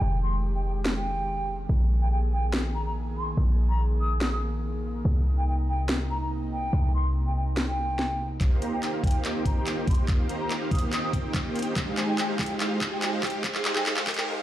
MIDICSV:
0, 0, Header, 1, 8, 480
1, 0, Start_track
1, 0, Key_signature, -3, "major"
1, 0, Tempo, 419580
1, 18, Time_signature, 4, 2, 24, 8
1, 16502, End_track
2, 0, Start_track
2, 0, Title_t, "Flute"
2, 0, Program_c, 0, 73
2, 0, Note_on_c, 0, 79, 85
2, 233, Note_off_c, 0, 79, 0
2, 255, Note_on_c, 0, 84, 87
2, 402, Note_off_c, 0, 84, 0
2, 616, Note_on_c, 0, 79, 82
2, 694, Note_off_c, 0, 79, 0
2, 730, Note_on_c, 0, 79, 77
2, 811, Note_off_c, 0, 79, 0
2, 1091, Note_on_c, 0, 79, 90
2, 1766, Note_off_c, 0, 79, 0
2, 2293, Note_on_c, 0, 79, 88
2, 2372, Note_off_c, 0, 79, 0
2, 2415, Note_on_c, 0, 79, 75
2, 2493, Note_off_c, 0, 79, 0
2, 2655, Note_on_c, 0, 79, 91
2, 2802, Note_off_c, 0, 79, 0
2, 3136, Note_on_c, 0, 82, 82
2, 3214, Note_off_c, 0, 82, 0
2, 3260, Note_on_c, 0, 82, 73
2, 3336, Note_off_c, 0, 82, 0
2, 3618, Note_on_c, 0, 84, 84
2, 3764, Note_off_c, 0, 84, 0
2, 4215, Note_on_c, 0, 82, 92
2, 4362, Note_off_c, 0, 82, 0
2, 4576, Note_on_c, 0, 87, 86
2, 4723, Note_off_c, 0, 87, 0
2, 4818, Note_on_c, 0, 87, 81
2, 4895, Note_off_c, 0, 87, 0
2, 4939, Note_on_c, 0, 87, 72
2, 5015, Note_off_c, 0, 87, 0
2, 6142, Note_on_c, 0, 79, 84
2, 6217, Note_off_c, 0, 79, 0
2, 6259, Note_on_c, 0, 79, 75
2, 6335, Note_off_c, 0, 79, 0
2, 6499, Note_on_c, 0, 79, 92
2, 6644, Note_off_c, 0, 79, 0
2, 6977, Note_on_c, 0, 82, 87
2, 7054, Note_off_c, 0, 82, 0
2, 7098, Note_on_c, 0, 82, 74
2, 7175, Note_off_c, 0, 82, 0
2, 7454, Note_on_c, 0, 79, 95
2, 7912, Note_off_c, 0, 79, 0
2, 7937, Note_on_c, 0, 84, 86
2, 8083, Note_off_c, 0, 84, 0
2, 8299, Note_on_c, 0, 79, 83
2, 8375, Note_off_c, 0, 79, 0
2, 8417, Note_on_c, 0, 79, 72
2, 8494, Note_off_c, 0, 79, 0
2, 8776, Note_on_c, 0, 79, 88
2, 9449, Note_off_c, 0, 79, 0
2, 9979, Note_on_c, 0, 79, 87
2, 10056, Note_off_c, 0, 79, 0
2, 10100, Note_on_c, 0, 79, 75
2, 10176, Note_off_c, 0, 79, 0
2, 10338, Note_on_c, 0, 79, 93
2, 10484, Note_off_c, 0, 79, 0
2, 10819, Note_on_c, 0, 82, 84
2, 10896, Note_off_c, 0, 82, 0
2, 10939, Note_on_c, 0, 82, 77
2, 11015, Note_off_c, 0, 82, 0
2, 11299, Note_on_c, 0, 84, 88
2, 11444, Note_off_c, 0, 84, 0
2, 11901, Note_on_c, 0, 82, 96
2, 12045, Note_off_c, 0, 82, 0
2, 12256, Note_on_c, 0, 87, 92
2, 12402, Note_off_c, 0, 87, 0
2, 12498, Note_on_c, 0, 87, 89
2, 12575, Note_off_c, 0, 87, 0
2, 12620, Note_on_c, 0, 87, 75
2, 12696, Note_off_c, 0, 87, 0
2, 13812, Note_on_c, 0, 79, 82
2, 13892, Note_off_c, 0, 79, 0
2, 13936, Note_on_c, 0, 79, 70
2, 14014, Note_off_c, 0, 79, 0
2, 14176, Note_on_c, 0, 79, 82
2, 14323, Note_off_c, 0, 79, 0
2, 14777, Note_on_c, 0, 79, 89
2, 14854, Note_off_c, 0, 79, 0
2, 14896, Note_on_c, 0, 79, 72
2, 14974, Note_off_c, 0, 79, 0
2, 15134, Note_on_c, 0, 79, 85
2, 15282, Note_off_c, 0, 79, 0
2, 15736, Note_on_c, 0, 79, 87
2, 15814, Note_off_c, 0, 79, 0
2, 16215, Note_on_c, 0, 79, 93
2, 16293, Note_off_c, 0, 79, 0
2, 16502, End_track
3, 0, Start_track
3, 0, Title_t, "Supersaw synth"
3, 0, Program_c, 1, 81
3, 9618, Note_on_c, 1, 58, 88
3, 9618, Note_on_c, 1, 63, 74
3, 9618, Note_on_c, 1, 67, 81
3, 9618, Note_on_c, 1, 72, 78
3, 9619, Note_on_c, 1, 77, 93
3, 9829, Note_off_c, 1, 58, 0
3, 9829, Note_off_c, 1, 63, 0
3, 9829, Note_off_c, 1, 67, 0
3, 9830, Note_off_c, 1, 72, 0
3, 9830, Note_off_c, 1, 77, 0
3, 9858, Note_on_c, 1, 58, 88
3, 9859, Note_on_c, 1, 63, 83
3, 9859, Note_on_c, 1, 67, 86
3, 9859, Note_on_c, 1, 72, 81
3, 9859, Note_on_c, 1, 82, 102
3, 10190, Note_off_c, 1, 58, 0
3, 10190, Note_off_c, 1, 63, 0
3, 10190, Note_off_c, 1, 67, 0
3, 10190, Note_off_c, 1, 72, 0
3, 10190, Note_off_c, 1, 82, 0
3, 10218, Note_on_c, 1, 67, 86
3, 10219, Note_on_c, 1, 63, 89
3, 10219, Note_on_c, 1, 72, 87
3, 10219, Note_on_c, 1, 77, 97
3, 10220, Note_on_c, 1, 58, 92
3, 10430, Note_off_c, 1, 58, 0
3, 10430, Note_off_c, 1, 63, 0
3, 10430, Note_off_c, 1, 67, 0
3, 10430, Note_off_c, 1, 72, 0
3, 10430, Note_off_c, 1, 77, 0
3, 10459, Note_on_c, 1, 58, 80
3, 10459, Note_on_c, 1, 63, 72
3, 10459, Note_on_c, 1, 67, 75
3, 10459, Note_on_c, 1, 72, 73
3, 10459, Note_on_c, 1, 77, 95
3, 10550, Note_off_c, 1, 58, 0
3, 10550, Note_off_c, 1, 63, 0
3, 10550, Note_off_c, 1, 67, 0
3, 10550, Note_off_c, 1, 72, 0
3, 10550, Note_off_c, 1, 77, 0
3, 10579, Note_on_c, 1, 63, 75
3, 10579, Note_on_c, 1, 72, 70
3, 10579, Note_on_c, 1, 79, 88
3, 10580, Note_on_c, 1, 58, 77
3, 10580, Note_on_c, 1, 67, 75
3, 11510, Note_off_c, 1, 58, 0
3, 11510, Note_off_c, 1, 63, 0
3, 11510, Note_off_c, 1, 67, 0
3, 11510, Note_off_c, 1, 72, 0
3, 11510, Note_off_c, 1, 79, 0
3, 11538, Note_on_c, 1, 77, 96
3, 11539, Note_on_c, 1, 58, 85
3, 11539, Note_on_c, 1, 63, 82
3, 11539, Note_on_c, 1, 67, 82
3, 11750, Note_off_c, 1, 58, 0
3, 11750, Note_off_c, 1, 63, 0
3, 11750, Note_off_c, 1, 67, 0
3, 11750, Note_off_c, 1, 77, 0
3, 11781, Note_on_c, 1, 58, 95
3, 11781, Note_on_c, 1, 63, 86
3, 11781, Note_on_c, 1, 67, 83
3, 11781, Note_on_c, 1, 72, 86
3, 11781, Note_on_c, 1, 82, 102
3, 12111, Note_off_c, 1, 58, 0
3, 12111, Note_off_c, 1, 63, 0
3, 12111, Note_off_c, 1, 67, 0
3, 12111, Note_off_c, 1, 72, 0
3, 12111, Note_off_c, 1, 82, 0
3, 12140, Note_on_c, 1, 58, 89
3, 12140, Note_on_c, 1, 63, 86
3, 12140, Note_on_c, 1, 67, 85
3, 12140, Note_on_c, 1, 72, 81
3, 12140, Note_on_c, 1, 77, 100
3, 12350, Note_off_c, 1, 58, 0
3, 12350, Note_off_c, 1, 63, 0
3, 12350, Note_off_c, 1, 67, 0
3, 12350, Note_off_c, 1, 77, 0
3, 12351, Note_off_c, 1, 72, 0
3, 12379, Note_on_c, 1, 58, 86
3, 12379, Note_on_c, 1, 63, 77
3, 12379, Note_on_c, 1, 67, 71
3, 12379, Note_on_c, 1, 72, 76
3, 12379, Note_on_c, 1, 77, 89
3, 12470, Note_off_c, 1, 58, 0
3, 12470, Note_off_c, 1, 63, 0
3, 12470, Note_off_c, 1, 67, 0
3, 12470, Note_off_c, 1, 72, 0
3, 12470, Note_off_c, 1, 77, 0
3, 12501, Note_on_c, 1, 58, 81
3, 12501, Note_on_c, 1, 63, 75
3, 12501, Note_on_c, 1, 67, 73
3, 12501, Note_on_c, 1, 72, 72
3, 12501, Note_on_c, 1, 79, 87
3, 13431, Note_off_c, 1, 58, 0
3, 13431, Note_off_c, 1, 63, 0
3, 13431, Note_off_c, 1, 67, 0
3, 13431, Note_off_c, 1, 72, 0
3, 13431, Note_off_c, 1, 79, 0
3, 13458, Note_on_c, 1, 56, 79
3, 13458, Note_on_c, 1, 63, 69
3, 13669, Note_off_c, 1, 63, 0
3, 13670, Note_off_c, 1, 56, 0
3, 13697, Note_on_c, 1, 80, 91
3, 13698, Note_on_c, 1, 56, 87
3, 13698, Note_on_c, 1, 63, 81
3, 13698, Note_on_c, 1, 67, 80
3, 13698, Note_on_c, 1, 72, 77
3, 14029, Note_off_c, 1, 56, 0
3, 14029, Note_off_c, 1, 63, 0
3, 14029, Note_off_c, 1, 72, 0
3, 14029, Note_off_c, 1, 80, 0
3, 14030, Note_off_c, 1, 67, 0
3, 14057, Note_on_c, 1, 63, 78
3, 14057, Note_on_c, 1, 72, 82
3, 14057, Note_on_c, 1, 77, 97
3, 14058, Note_on_c, 1, 56, 86
3, 14058, Note_on_c, 1, 67, 81
3, 14269, Note_off_c, 1, 56, 0
3, 14269, Note_off_c, 1, 63, 0
3, 14269, Note_off_c, 1, 67, 0
3, 14269, Note_off_c, 1, 72, 0
3, 14269, Note_off_c, 1, 77, 0
3, 14296, Note_on_c, 1, 72, 68
3, 14297, Note_on_c, 1, 56, 75
3, 14297, Note_on_c, 1, 63, 70
3, 14297, Note_on_c, 1, 67, 68
3, 14297, Note_on_c, 1, 77, 85
3, 14388, Note_off_c, 1, 72, 0
3, 14389, Note_off_c, 1, 56, 0
3, 14389, Note_off_c, 1, 63, 0
3, 14389, Note_off_c, 1, 67, 0
3, 14389, Note_off_c, 1, 77, 0
3, 14417, Note_on_c, 1, 63, 73
3, 14417, Note_on_c, 1, 77, 90
3, 14418, Note_on_c, 1, 56, 82
3, 14418, Note_on_c, 1, 67, 77
3, 14418, Note_on_c, 1, 72, 74
3, 14629, Note_off_c, 1, 56, 0
3, 14629, Note_off_c, 1, 63, 0
3, 14629, Note_off_c, 1, 67, 0
3, 14629, Note_off_c, 1, 72, 0
3, 14629, Note_off_c, 1, 77, 0
3, 14657, Note_on_c, 1, 56, 97
3, 14657, Note_on_c, 1, 63, 85
3, 14657, Note_on_c, 1, 67, 82
3, 14657, Note_on_c, 1, 80, 107
3, 14989, Note_off_c, 1, 56, 0
3, 14989, Note_off_c, 1, 63, 0
3, 14989, Note_off_c, 1, 67, 0
3, 14989, Note_off_c, 1, 80, 0
3, 15018, Note_on_c, 1, 56, 96
3, 15018, Note_on_c, 1, 63, 84
3, 15018, Note_on_c, 1, 72, 91
3, 15019, Note_on_c, 1, 67, 87
3, 15019, Note_on_c, 1, 77, 105
3, 15229, Note_off_c, 1, 63, 0
3, 15230, Note_off_c, 1, 56, 0
3, 15230, Note_off_c, 1, 67, 0
3, 15230, Note_off_c, 1, 72, 0
3, 15230, Note_off_c, 1, 77, 0
3, 15258, Note_on_c, 1, 63, 75
3, 15258, Note_on_c, 1, 67, 74
3, 15259, Note_on_c, 1, 56, 82
3, 15259, Note_on_c, 1, 72, 74
3, 15259, Note_on_c, 1, 77, 91
3, 15349, Note_off_c, 1, 63, 0
3, 15349, Note_off_c, 1, 67, 0
3, 15350, Note_off_c, 1, 56, 0
3, 15350, Note_off_c, 1, 72, 0
3, 15350, Note_off_c, 1, 77, 0
3, 15377, Note_on_c, 1, 56, 87
3, 15377, Note_on_c, 1, 72, 81
3, 15378, Note_on_c, 1, 67, 82
3, 15379, Note_on_c, 1, 63, 80
3, 15589, Note_off_c, 1, 56, 0
3, 15589, Note_off_c, 1, 67, 0
3, 15589, Note_off_c, 1, 72, 0
3, 15590, Note_off_c, 1, 63, 0
3, 15618, Note_on_c, 1, 56, 88
3, 15618, Note_on_c, 1, 63, 86
3, 15618, Note_on_c, 1, 67, 84
3, 15618, Note_on_c, 1, 72, 87
3, 15618, Note_on_c, 1, 80, 101
3, 15839, Note_off_c, 1, 56, 0
3, 15839, Note_off_c, 1, 63, 0
3, 15839, Note_off_c, 1, 67, 0
3, 15839, Note_off_c, 1, 72, 0
3, 15839, Note_off_c, 1, 80, 0
3, 15858, Note_on_c, 1, 56, 90
3, 15858, Note_on_c, 1, 63, 85
3, 15858, Note_on_c, 1, 77, 101
3, 15859, Note_on_c, 1, 67, 83
3, 15859, Note_on_c, 1, 72, 81
3, 16069, Note_off_c, 1, 56, 0
3, 16069, Note_off_c, 1, 63, 0
3, 16069, Note_off_c, 1, 77, 0
3, 16070, Note_off_c, 1, 67, 0
3, 16070, Note_off_c, 1, 72, 0
3, 16098, Note_on_c, 1, 56, 92
3, 16099, Note_on_c, 1, 63, 87
3, 16099, Note_on_c, 1, 67, 87
3, 16099, Note_on_c, 1, 72, 83
3, 16099, Note_on_c, 1, 80, 107
3, 16319, Note_off_c, 1, 56, 0
3, 16319, Note_off_c, 1, 63, 0
3, 16319, Note_off_c, 1, 72, 0
3, 16320, Note_off_c, 1, 67, 0
3, 16320, Note_off_c, 1, 80, 0
3, 16339, Note_on_c, 1, 63, 79
3, 16340, Note_on_c, 1, 56, 85
3, 16340, Note_on_c, 1, 67, 78
3, 16340, Note_on_c, 1, 72, 78
3, 16340, Note_on_c, 1, 77, 93
3, 16502, Note_off_c, 1, 56, 0
3, 16502, Note_off_c, 1, 63, 0
3, 16502, Note_off_c, 1, 67, 0
3, 16502, Note_off_c, 1, 72, 0
3, 16502, Note_off_c, 1, 77, 0
3, 16502, End_track
4, 0, Start_track
4, 0, Title_t, "Analog synth pad"
4, 0, Program_c, 2, 89
4, 0, Note_on_c, 2, 51, 89
4, 0, Note_on_c, 2, 56, 80
4, 0, Note_on_c, 2, 67, 95
4, 1902, Note_off_c, 2, 51, 0
4, 1902, Note_off_c, 2, 56, 0
4, 1902, Note_off_c, 2, 67, 0
4, 1939, Note_on_c, 2, 68, 95
4, 1940, Note_on_c, 2, 51, 85
4, 1940, Note_on_c, 2, 58, 79
4, 5740, Note_off_c, 2, 51, 0
4, 5740, Note_off_c, 2, 68, 0
4, 5778, Note_on_c, 2, 63, 99
4, 5779, Note_on_c, 2, 48, 90
4, 9573, Note_off_c, 2, 58, 0
4, 9580, Note_off_c, 2, 48, 0
4, 9580, Note_off_c, 2, 63, 0
4, 9618, Note_on_c, 2, 60, 77
4, 9619, Note_on_c, 2, 51, 91
4, 9619, Note_on_c, 2, 67, 99
4, 9620, Note_on_c, 2, 65, 79
4, 13420, Note_off_c, 2, 60, 0
4, 13458, Note_on_c, 2, 56, 85
4, 16293, Note_off_c, 2, 51, 0
4, 16293, Note_off_c, 2, 65, 0
4, 16293, Note_off_c, 2, 67, 0
4, 16309, Note_off_c, 2, 56, 0
4, 16502, End_track
5, 0, Start_track
5, 0, Title_t, "808-style bass"
5, 0, Program_c, 3, 38
5, 16, Note_on_c, 3, 29, 83
5, 1913, Note_off_c, 3, 29, 0
5, 1937, Note_on_c, 3, 34, 81
5, 3834, Note_off_c, 3, 34, 0
5, 3859, Note_on_c, 3, 34, 87
5, 5755, Note_off_c, 3, 34, 0
5, 5778, Note_on_c, 3, 36, 84
5, 7674, Note_off_c, 3, 36, 0
5, 7699, Note_on_c, 3, 36, 78
5, 9595, Note_off_c, 3, 36, 0
5, 16502, End_track
6, 0, Start_track
6, 0, Title_t, "Riser"
6, 0, Program_c, 4, 103
6, 9619, Note_on_c, 4, 60, 77
6, 16338, Note_off_c, 4, 60, 0
6, 16502, End_track
7, 0, Start_track
7, 0, Title_t, "Swell"
7, 0, Program_c, 5, 103
7, 16337, Note_on_c, 5, 60, 77
7, 16502, Note_off_c, 5, 60, 0
7, 16502, End_track
8, 0, Start_track
8, 0, Title_t, "Drums"
8, 976, Note_on_c, 9, 38, 117
8, 1091, Note_off_c, 9, 38, 0
8, 2898, Note_on_c, 9, 38, 113
8, 3013, Note_off_c, 9, 38, 0
8, 4818, Note_on_c, 9, 38, 112
8, 4933, Note_off_c, 9, 38, 0
8, 6738, Note_on_c, 9, 38, 113
8, 6852, Note_off_c, 9, 38, 0
8, 8660, Note_on_c, 9, 38, 105
8, 8775, Note_off_c, 9, 38, 0
8, 9139, Note_on_c, 9, 38, 57
8, 9253, Note_off_c, 9, 38, 0
8, 9618, Note_on_c, 9, 36, 116
8, 9619, Note_on_c, 9, 39, 49
8, 9619, Note_on_c, 9, 42, 78
8, 9732, Note_off_c, 9, 36, 0
8, 9734, Note_off_c, 9, 39, 0
8, 9734, Note_off_c, 9, 42, 0
8, 9861, Note_on_c, 9, 42, 66
8, 9976, Note_off_c, 9, 42, 0
8, 10101, Note_on_c, 9, 39, 46
8, 10101, Note_on_c, 9, 42, 79
8, 10215, Note_off_c, 9, 39, 0
8, 10215, Note_off_c, 9, 42, 0
8, 10337, Note_on_c, 9, 36, 102
8, 10341, Note_on_c, 9, 42, 49
8, 10380, Note_off_c, 9, 42, 0
8, 10380, Note_on_c, 9, 42, 64
8, 10420, Note_off_c, 9, 42, 0
8, 10420, Note_on_c, 9, 42, 81
8, 10452, Note_off_c, 9, 36, 0
8, 10534, Note_off_c, 9, 42, 0
8, 10579, Note_on_c, 9, 39, 53
8, 10579, Note_on_c, 9, 42, 81
8, 10693, Note_off_c, 9, 39, 0
8, 10693, Note_off_c, 9, 42, 0
8, 10817, Note_on_c, 9, 36, 57
8, 10818, Note_on_c, 9, 42, 68
8, 10931, Note_off_c, 9, 36, 0
8, 10933, Note_off_c, 9, 42, 0
8, 11057, Note_on_c, 9, 39, 51
8, 11057, Note_on_c, 9, 42, 78
8, 11172, Note_off_c, 9, 39, 0
8, 11172, Note_off_c, 9, 42, 0
8, 11297, Note_on_c, 9, 36, 105
8, 11298, Note_on_c, 9, 42, 48
8, 11337, Note_off_c, 9, 42, 0
8, 11337, Note_on_c, 9, 42, 64
8, 11377, Note_off_c, 9, 42, 0
8, 11377, Note_on_c, 9, 42, 84
8, 11411, Note_off_c, 9, 36, 0
8, 11491, Note_off_c, 9, 42, 0
8, 11537, Note_on_c, 9, 36, 127
8, 11537, Note_on_c, 9, 39, 60
8, 11537, Note_on_c, 9, 42, 84
8, 11651, Note_off_c, 9, 36, 0
8, 11651, Note_off_c, 9, 39, 0
8, 11651, Note_off_c, 9, 42, 0
8, 11776, Note_on_c, 9, 42, 68
8, 11891, Note_off_c, 9, 42, 0
8, 12017, Note_on_c, 9, 39, 58
8, 12017, Note_on_c, 9, 42, 78
8, 12132, Note_off_c, 9, 39, 0
8, 12132, Note_off_c, 9, 42, 0
8, 12257, Note_on_c, 9, 36, 107
8, 12259, Note_on_c, 9, 42, 49
8, 12298, Note_off_c, 9, 42, 0
8, 12298, Note_on_c, 9, 42, 68
8, 12338, Note_off_c, 9, 42, 0
8, 12338, Note_on_c, 9, 42, 84
8, 12371, Note_off_c, 9, 36, 0
8, 12452, Note_off_c, 9, 42, 0
8, 12499, Note_on_c, 9, 39, 65
8, 12499, Note_on_c, 9, 42, 82
8, 12614, Note_off_c, 9, 39, 0
8, 12614, Note_off_c, 9, 42, 0
8, 12736, Note_on_c, 9, 36, 60
8, 12738, Note_on_c, 9, 42, 67
8, 12851, Note_off_c, 9, 36, 0
8, 12853, Note_off_c, 9, 42, 0
8, 12976, Note_on_c, 9, 36, 116
8, 12979, Note_on_c, 9, 39, 70
8, 12979, Note_on_c, 9, 42, 84
8, 13091, Note_off_c, 9, 36, 0
8, 13094, Note_off_c, 9, 39, 0
8, 13094, Note_off_c, 9, 42, 0
8, 13219, Note_on_c, 9, 42, 52
8, 13259, Note_off_c, 9, 42, 0
8, 13259, Note_on_c, 9, 42, 70
8, 13299, Note_off_c, 9, 42, 0
8, 13299, Note_on_c, 9, 42, 84
8, 13413, Note_off_c, 9, 42, 0
8, 13456, Note_on_c, 9, 36, 127
8, 13459, Note_on_c, 9, 39, 76
8, 13459, Note_on_c, 9, 42, 83
8, 13571, Note_off_c, 9, 36, 0
8, 13573, Note_off_c, 9, 39, 0
8, 13573, Note_off_c, 9, 42, 0
8, 13698, Note_on_c, 9, 39, 73
8, 13698, Note_on_c, 9, 42, 65
8, 13812, Note_off_c, 9, 39, 0
8, 13812, Note_off_c, 9, 42, 0
8, 13937, Note_on_c, 9, 39, 74
8, 13937, Note_on_c, 9, 42, 82
8, 14051, Note_off_c, 9, 39, 0
8, 14051, Note_off_c, 9, 42, 0
8, 14176, Note_on_c, 9, 36, 113
8, 14177, Note_on_c, 9, 39, 79
8, 14177, Note_on_c, 9, 42, 51
8, 14217, Note_off_c, 9, 42, 0
8, 14217, Note_on_c, 9, 42, 69
8, 14258, Note_off_c, 9, 42, 0
8, 14258, Note_on_c, 9, 42, 82
8, 14290, Note_off_c, 9, 36, 0
8, 14291, Note_off_c, 9, 39, 0
8, 14373, Note_off_c, 9, 42, 0
8, 14418, Note_on_c, 9, 39, 77
8, 14418, Note_on_c, 9, 42, 83
8, 14533, Note_off_c, 9, 39, 0
8, 14533, Note_off_c, 9, 42, 0
8, 14656, Note_on_c, 9, 36, 60
8, 14659, Note_on_c, 9, 39, 83
8, 14659, Note_on_c, 9, 42, 70
8, 14771, Note_off_c, 9, 36, 0
8, 14773, Note_off_c, 9, 39, 0
8, 14773, Note_off_c, 9, 42, 0
8, 14898, Note_on_c, 9, 39, 86
8, 14898, Note_on_c, 9, 42, 83
8, 15012, Note_off_c, 9, 39, 0
8, 15012, Note_off_c, 9, 42, 0
8, 15136, Note_on_c, 9, 36, 110
8, 15137, Note_on_c, 9, 39, 93
8, 15137, Note_on_c, 9, 42, 52
8, 15177, Note_off_c, 9, 42, 0
8, 15177, Note_on_c, 9, 42, 66
8, 15216, Note_off_c, 9, 42, 0
8, 15216, Note_on_c, 9, 42, 85
8, 15250, Note_off_c, 9, 36, 0
8, 15251, Note_off_c, 9, 39, 0
8, 15330, Note_off_c, 9, 42, 0
8, 15376, Note_on_c, 9, 36, 127
8, 15376, Note_on_c, 9, 39, 95
8, 15376, Note_on_c, 9, 42, 86
8, 15491, Note_off_c, 9, 36, 0
8, 15491, Note_off_c, 9, 39, 0
8, 15491, Note_off_c, 9, 42, 0
8, 15497, Note_on_c, 9, 39, 81
8, 15611, Note_off_c, 9, 39, 0
8, 15616, Note_on_c, 9, 39, 97
8, 15616, Note_on_c, 9, 42, 65
8, 15731, Note_off_c, 9, 39, 0
8, 15731, Note_off_c, 9, 42, 0
8, 15737, Note_on_c, 9, 39, 85
8, 15851, Note_off_c, 9, 39, 0
8, 15857, Note_on_c, 9, 39, 93
8, 15857, Note_on_c, 9, 42, 76
8, 15972, Note_off_c, 9, 39, 0
8, 15972, Note_off_c, 9, 42, 0
8, 15977, Note_on_c, 9, 39, 88
8, 16091, Note_off_c, 9, 39, 0
8, 16096, Note_on_c, 9, 36, 118
8, 16097, Note_on_c, 9, 39, 96
8, 16097, Note_on_c, 9, 42, 48
8, 16138, Note_off_c, 9, 42, 0
8, 16138, Note_on_c, 9, 42, 62
8, 16177, Note_off_c, 9, 42, 0
8, 16177, Note_on_c, 9, 42, 82
8, 16211, Note_off_c, 9, 36, 0
8, 16211, Note_off_c, 9, 39, 0
8, 16217, Note_on_c, 9, 39, 93
8, 16292, Note_off_c, 9, 42, 0
8, 16331, Note_off_c, 9, 39, 0
8, 16502, End_track
0, 0, End_of_file